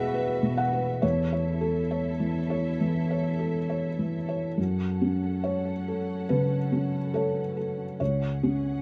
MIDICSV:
0, 0, Header, 1, 3, 480
1, 0, Start_track
1, 0, Key_signature, 3, "minor"
1, 0, Tempo, 884956
1, 558, Time_signature, 4, 2, 24, 8
1, 2482, Tempo, 854701
1, 4865, End_track
2, 0, Start_track
2, 0, Title_t, "Felt piano"
2, 0, Program_c, 0, 0
2, 0, Control_c, 0, 64, 127
2, 0, Note_on_c, 0, 47, 54
2, 0, Note_on_c, 0, 68, 48
2, 0, Note_on_c, 0, 71, 57
2, 0, Note_on_c, 0, 76, 85
2, 0, Note_on_c, 0, 78, 88
2, 76, Note_off_c, 0, 71, 0
2, 76, Note_on_c, 0, 71, 49
2, 172, Note_off_c, 0, 68, 0
2, 231, Note_off_c, 0, 47, 0
2, 231, Note_on_c, 0, 47, 44
2, 298, Note_off_c, 0, 76, 0
2, 311, Note_off_c, 0, 78, 0
2, 311, Note_on_c, 0, 78, 65
2, 331, Note_off_c, 0, 71, 0
2, 397, Note_on_c, 0, 71, 44
2, 490, Note_off_c, 0, 47, 0
2, 537, Note_off_c, 0, 78, 0
2, 553, Note_on_c, 0, 73, 66
2, 556, Note_on_c, 0, 40, 52
2, 557, Note_off_c, 0, 71, 0
2, 567, Control_c, 0, 64, 0
2, 655, Control_c, 0, 64, 127
2, 712, Note_off_c, 0, 73, 0
2, 720, Note_on_c, 0, 73, 38
2, 873, Note_on_c, 0, 69, 47
2, 976, Note_off_c, 0, 73, 0
2, 1035, Note_on_c, 0, 73, 43
2, 1133, Note_off_c, 0, 69, 0
2, 1193, Note_on_c, 0, 52, 39
2, 1294, Note_off_c, 0, 73, 0
2, 1357, Note_on_c, 0, 73, 44
2, 1452, Note_off_c, 0, 52, 0
2, 1497, Note_off_c, 0, 40, 0
2, 1522, Note_on_c, 0, 52, 42
2, 1615, Note_off_c, 0, 73, 0
2, 1685, Note_on_c, 0, 73, 41
2, 1778, Note_off_c, 0, 52, 0
2, 1838, Note_on_c, 0, 69, 36
2, 1940, Note_off_c, 0, 73, 0
2, 2005, Note_on_c, 0, 73, 37
2, 2097, Note_off_c, 0, 69, 0
2, 2163, Note_on_c, 0, 52, 36
2, 2261, Note_off_c, 0, 73, 0
2, 2325, Note_on_c, 0, 73, 37
2, 2419, Note_off_c, 0, 52, 0
2, 2481, Note_on_c, 0, 42, 40
2, 2483, Note_off_c, 0, 73, 0
2, 2493, Control_c, 0, 64, 0
2, 2591, Control_c, 0, 64, 127
2, 2729, Note_on_c, 0, 61, 38
2, 2965, Note_on_c, 0, 73, 55
2, 3115, Note_off_c, 0, 61, 0
2, 3216, Note_on_c, 0, 69, 34
2, 3423, Note_off_c, 0, 73, 0
2, 3425, Note_off_c, 0, 42, 0
2, 3446, Note_on_c, 0, 71, 58
2, 3451, Note_on_c, 0, 49, 37
2, 3593, Note_off_c, 0, 69, 0
2, 3686, Note_on_c, 0, 61, 33
2, 3830, Note_off_c, 0, 49, 0
2, 3901, Note_off_c, 0, 71, 0
2, 3921, Note_on_c, 0, 69, 59
2, 3929, Note_on_c, 0, 73, 33
2, 4069, Note_off_c, 0, 61, 0
2, 4154, Note_off_c, 0, 69, 0
2, 4163, Note_on_c, 0, 69, 31
2, 4311, Note_off_c, 0, 73, 0
2, 4404, Note_off_c, 0, 69, 0
2, 4405, Note_on_c, 0, 73, 56
2, 4409, Note_on_c, 0, 37, 40
2, 4416, Control_c, 0, 64, 0
2, 4516, Control_c, 0, 64, 127
2, 4648, Note_on_c, 0, 61, 41
2, 4865, Note_off_c, 0, 37, 0
2, 4865, Note_off_c, 0, 61, 0
2, 4865, Note_off_c, 0, 73, 0
2, 4865, End_track
3, 0, Start_track
3, 0, Title_t, "String section"
3, 0, Program_c, 1, 48
3, 0, Note_on_c, 1, 66, 68
3, 0, Note_on_c, 1, 71, 70
3, 0, Note_on_c, 1, 76, 71
3, 555, Note_off_c, 1, 71, 0
3, 555, Note_off_c, 1, 76, 0
3, 556, Note_off_c, 1, 66, 0
3, 558, Note_on_c, 1, 64, 50
3, 560, Note_on_c, 1, 69, 52
3, 561, Note_on_c, 1, 76, 50
3, 2462, Note_off_c, 1, 76, 0
3, 2482, Note_off_c, 1, 64, 0
3, 2483, Note_off_c, 1, 69, 0
3, 2496, Note_on_c, 1, 61, 42
3, 2500, Note_on_c, 1, 69, 40
3, 2501, Note_on_c, 1, 78, 41
3, 4389, Note_off_c, 1, 61, 0
3, 4391, Note_off_c, 1, 69, 0
3, 4392, Note_off_c, 1, 78, 0
3, 4404, Note_on_c, 1, 61, 42
3, 4404, Note_on_c, 1, 78, 43
3, 4407, Note_on_c, 1, 68, 40
3, 4865, Note_off_c, 1, 61, 0
3, 4865, Note_off_c, 1, 68, 0
3, 4865, Note_off_c, 1, 78, 0
3, 4865, End_track
0, 0, End_of_file